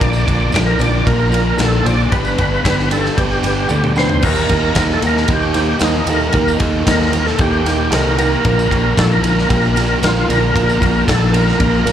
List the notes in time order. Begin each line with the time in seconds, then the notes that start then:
0.00 A#1 A#2 D3 F3 A#3 D4 F4 A#4 D5, kick, ride
0.13 tambourine
0.26 A#1 A#2 D3 F3 A#3 D4 F4 A#4, kick, ride, tambourine
0.52 A#1 A#2 D3 F3 A#3 D4 F4 A4 D5, kick, snare, ride, tambourine
0.66 A#4, tambourine
0.79 A#1 A#2 D3 F3 A#3 D4 F4 A#4 D5, ride, tambourine
1.05 A#1 A#2 D3 F3 A#3 D4 F4 A#4, kick, ride, tambourine
1.19 tambourine
1.31 A#2 D3 F3 A#3 D4 F4 A#4, ride, tambourine
1.57 A#1 A#2 D3 F3 A#3 D4 F4 A4 A#4, snare, ride, tambourine
1.72 tambourine
1.83 A#1 A#2 D3 F3 A#3 D4 F4 C5 D5, ride, tambourine
2.00 tambourine
2.11 G1 G2 D3 G3 G#3 B3 D4 D#4 G4 B4 C5, kick, ride, tambourine
2.25 G3 D4 B4, tambourine
2.36 G1 G2 D3 G3 B3 D4 G4 D5, kick, ride, tambourine
2.54 tambourine
2.63 G1 G2 D3 G3 B3 D4 G4 B4, kick, snare, ride, tambourine
2.79 snare, tambourine
2.90 G2 D3 G3 B3 D4 G4 A4 B4, ride, tambourine
3.05 snare, tambourine
3.15 G1 G2 D3 G3 B3 D4 G4 B4, kick, ride
3.31 tambourine
3.43 G1 G2 D3 G3 B3 D4 G4 B4, snare, ride, tambourine
3.57 tambourine
3.68 D2 G2 D3 G3 B3 D4 G4 A4, high tom, tambourine
3.83 mid tom, tambourine
3.95 G2 D3 G3 B3 D4 G4 B4 C5, snare, tambourine
4.09 floor tom, tambourine
4.21 D#2 D#3 G3 A#3 D#4 G4 A#4, kick, crash, tambourine
4.35 tambourine
4.48 D#2 D#3 G3 A#3 D#4 G4 A#4, kick, ride, tambourine
4.75 D#2 D#3 G3 A#3 D#4 G4 A#4, kick, snare, ride, tambourine
4.90 A4, snare
5.01 D#2 D#3 G3 A#3 D#4 G4 A#4, ride, tambourine
5.07 A#4
5.17 snare
5.27 D#2 D#3 G3 A#3 D#4 G4 A#4, kick, ride, tambourine
5.33 G4
5.42 tambourine
5.54 D#3 G3 A#3 D#4 G4 C5, snare, ride, tambourine
5.79 D#2 D#3 G3 A#3 D#4 G4 C5, snare, ride, tambourine
5.94 tambourine
6.06 D#2 D#3 G3 A#3 D#4 G4 A4 A#4, ride, tambourine
6.20 tambourine
6.32 D#2 D#3 G3 A#3 D#4 G4 A#4, kick, ride, tambourine
6.48 tambourine
6.58 D#2 D#3 G3 A#3 D#4 G4 A4, kick, ride, tambourine
6.85 D#2 D#3 G3 A#3 D#4 G4 A4 A#4, kick, snare, ride, tambourine
7.01 A#4, snare
7.12 D#3 G3 A#3 D#4 G4 A#4, ride, tambourine
7.26 A4, snare
7.38 D#2 D#3 G3 A#3 D#4 G4 A4, kick, ride, tambourine
7.53 tambourine
7.64 D#2 D#3 G3 A#3 D#4 G4 A#4, snare, ride, tambourine
7.90 C2 D#3 G3 A#3 D#4 G4 A4 A#4, snare, ride, tambourine
8.07 tambourine
8.18 D#3 G3 A#3 D#4 G4 A#4, ride, tambourine
8.33 tambourine
8.43 A#1 A#2 D3 F3 A#3 D4 F4 A#4, kick, ride, tambourine
8.59 tambourine
8.70 A#1 A#2 D3 F3 A#3 D4 F4 G4, kick, ride, tambourine
8.96 A#1 A#2 D3 F3 A#3 D4 F4 A4 A#4, kick, snare, ride, tambourine
9.12 A#4, tambourine
9.23 A#1 A#2 D3 F3 A#3 D4 F4 A#4, ride, tambourine
9.39 snare
9.49 A#1 A#2 D3 F3 A#3 D4 F4 G4 A#4, kick, ride, tambourine
9.65 tambourine
9.75 A#2 D3 F3 A#3 D4 F4 G4, snare, ride, tambourine
10.01 A#1 A#2 D3 F3 A#3 D4 F4 A#4, snare, ride, tambourine
10.16 tambourine
10.28 A#1 A#2 D3 F3 A#3 D4 F4 A#4, ride, tambourine
10.43 tambourine
10.54 A#1 A#2 D3 F3 A#3 D4 F4 A#4, kick, ride, tambourine
10.69 tambourine
10.81 A#1 A#2 D3 F3 A#3 D4 F4 A#4, kick, ride, tambourine
11.05 A#1 A#2 A#3 D4 F4 A4, kick, ride
11.09 D3 F3 A#3 D4, snare, tambourine
11.31 A#2 D3 F3 A#3 D4 F4 A#4, ride, tambourine
11.36 D4
11.48 snare
11.55 A#3 D4 F4 A#4
11.60 A#1 A#2 D3 F3 A#3 D4, kick, ride, tambourine
11.74 tambourine
11.85 A#1 A#2 D3 F3 A#3 D4 F4 A#4, snare, ride, tambourine